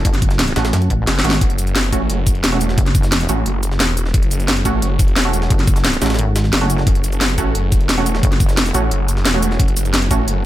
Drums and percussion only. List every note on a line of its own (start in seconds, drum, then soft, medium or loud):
0.05 kick loud
0.05 closed hi-hat loud
0.05 closed hi-hat medium
0.14 snare soft
0.14 closed hi-hat soft
0.22 kick loud
0.22 closed hi-hat medium
0.31 snare soft
0.31 closed hi-hat soft
0.39 snare loud
0.39 closed hi-hat medium
0.48 snare soft
0.48 closed hi-hat soft
0.56 snare loud
0.56 closed hi-hat medium
0.65 snare loud
0.65 closed hi-hat medium
0.73 snare loud
0.73 closed hi-hat medium
0.73 closed hi-hat loud
0.82 closed hi-hat medium
0.90 kick medium
0.90 closed hi-hat medium
1.07 snare medium
1.07 snare loud
1.07 closed hi-hat medium
1.16 snare medium
1.16 closed hi-hat soft
1.24 closed hi-hat medium
1.30 snare medium
1.33 snare loud
1.33 closed hi-hat medium
1.41 kick loud
1.41 closed hi-hat medium
1.50 closed hi-hat soft
1.58 closed hi-hat medium
1.58 shaker medium
1.67 closed hi-hat soft
1.67 shaker soft
1.75 snare loud
1.75 closed hi-hat medium
1.84 closed hi-hat soft
1.93 kick medium
1.93 closed hi-hat medium
1.93 shaker medium
2.10 closed hi-hat medium
2.27 kick loud
2.27 closed hi-hat medium
2.27 shaker medium
2.35 closed hi-hat soft
2.44 snare loud
2.44 closed hi-hat medium
2.52 closed hi-hat soft
2.61 closed hi-hat medium
2.61 shaker medium
2.69 snare medium
2.78 kick loud
2.78 closed hi-hat medium
2.86 snare soft
2.86 closed hi-hat soft
2.95 kick loud
2.95 closed hi-hat medium
2.95 shaker medium
3.03 snare soft
3.03 closed hi-hat soft
3.03 shaker soft
3.12 snare loud
3.12 closed hi-hat medium
3.20 snare soft
3.20 closed hi-hat soft
3.20 shaker soft
3.29 closed hi-hat medium
3.29 shaker medium
3.46 closed hi-hat medium
3.63 closed hi-hat medium
3.63 shaker medium
3.72 snare soft
3.80 snare loud
3.80 closed hi-hat medium
3.89 closed hi-hat soft
3.97 closed hi-hat medium
3.97 shaker medium
4.06 snare soft
4.14 kick loud
4.14 closed hi-hat medium
4.23 closed hi-hat soft
4.31 closed hi-hat medium
4.31 shaker medium
4.40 closed hi-hat soft
4.40 shaker soft
4.48 snare loud
4.48 closed hi-hat medium
4.57 closed hi-hat soft
4.65 kick medium
4.65 closed hi-hat medium
4.65 shaker medium
4.82 closed hi-hat medium
4.99 kick loud
4.99 closed hi-hat medium
4.99 shaker medium
5.08 closed hi-hat soft
5.16 snare loud
5.16 closed hi-hat medium
5.25 closed hi-hat soft
5.33 closed hi-hat medium
5.33 shaker medium
5.42 snare medium
5.50 kick loud
5.50 closed hi-hat medium
5.59 snare soft
5.59 closed hi-hat soft
5.67 kick loud
5.67 closed hi-hat medium
5.67 shaker medium
5.76 snare soft
5.76 closed hi-hat soft
5.76 shaker soft
5.85 snare loud
5.85 closed hi-hat medium
5.93 snare soft
5.93 closed hi-hat soft
5.93 shaker soft
6.02 snare medium
6.02 closed hi-hat medium
6.02 shaker medium
6.06 snare medium
6.06 closed hi-hat medium
6.10 snare medium
6.10 closed hi-hat medium
6.14 snare medium
6.14 closed hi-hat medium
6.19 closed hi-hat medium
6.36 snare loud
6.36 closed hi-hat medium
6.36 shaker medium
6.44 snare soft
6.53 snare loud
6.53 closed hi-hat medium
6.61 closed hi-hat soft
6.70 closed hi-hat medium
6.70 shaker medium
6.78 snare soft
6.87 kick loud
6.87 closed hi-hat medium
6.95 closed hi-hat soft
7.04 closed hi-hat medium
7.04 shaker medium
7.12 closed hi-hat soft
7.12 shaker soft
7.21 snare loud
7.21 closed hi-hat medium
7.29 closed hi-hat soft
7.38 kick medium
7.38 closed hi-hat medium
7.38 shaker medium
7.55 closed hi-hat medium
7.72 kick loud
7.72 closed hi-hat medium
7.72 shaker medium
7.81 closed hi-hat soft
7.89 snare loud
7.89 closed hi-hat medium
7.98 closed hi-hat soft
8.06 closed hi-hat medium
8.06 shaker medium
8.15 snare medium
8.23 kick loud
8.23 closed hi-hat medium
8.32 snare soft
8.32 closed hi-hat soft
8.40 kick loud
8.40 closed hi-hat medium
8.40 shaker medium
8.49 snare soft
8.49 closed hi-hat soft
8.49 shaker soft
8.57 snare loud
8.57 closed hi-hat medium
8.66 snare soft
8.66 closed hi-hat soft
8.66 shaker soft
8.74 closed hi-hat medium
8.74 shaker medium
8.91 closed hi-hat medium
9.08 closed hi-hat medium
9.08 shaker medium
9.17 snare soft
9.25 snare loud
9.25 closed hi-hat medium
9.34 closed hi-hat soft
9.42 closed hi-hat medium
9.42 shaker medium
9.51 snare soft
9.60 kick loud
9.60 closed hi-hat medium
9.68 closed hi-hat soft
9.77 closed hi-hat medium
9.77 shaker medium
9.85 closed hi-hat soft
9.85 shaker soft
9.94 snare loud
9.94 closed hi-hat medium
10.02 closed hi-hat soft
10.11 kick medium
10.11 closed hi-hat medium
10.11 shaker medium
10.28 closed hi-hat loud
10.28 closed hi-hat medium